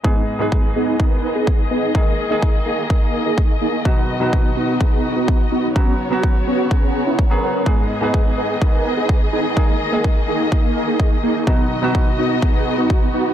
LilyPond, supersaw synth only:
\new Staff \with { instrumentName = "Supersaw synth" } { \time 4/4 \key gis \minor \tempo 4 = 126 <b dis' gis'>16 r8 <b dis' gis'>8 r16 <b dis' gis'>8 <b dis' ais'>8. <b dis' gis'>8 r16 <b dis' gis'>8 | <ais dis' gis'>16 r8 <ais dis' gis'>8 r16 <ais dis' gis'>8 <ais dis' ais'>8. <ais dis' gis'>8 r16 <ais dis' gis'>8 | <b dis' fis'>16 r8 <b dis' fis'>8 r16 <b dis' fis'>8 <b dis' gis'>8. <b dis' fis'>8 r16 <b dis' fis'>8 | <b cis' fis'>16 r8 <b cis' fis'>8 r16 <b cis' fis'>8 <b cis' gis'>8. <b cis' e'>16 r16 <b cis' ais'>8 <b cis' ais'>16 |
<b dis' gis'>16 r8 <b dis' gis'>8 r16 <b dis' gis'>8 <b dis' ais'>8. <b dis' gis'>8 r16 <b dis' gis'>8 | <ais dis' gis'>16 r8 <ais dis' gis'>8 r16 <ais dis' gis'>8 <ais dis' ais'>8. <ais dis' gis'>8 r16 <ais dis' gis'>8 | <b dis' fis'>16 r8 <b dis' fis'>8 r16 <b dis' fis'>8 <b dis' gis'>8. <b dis' fis'>8 r16 <b dis' fis'>8 | }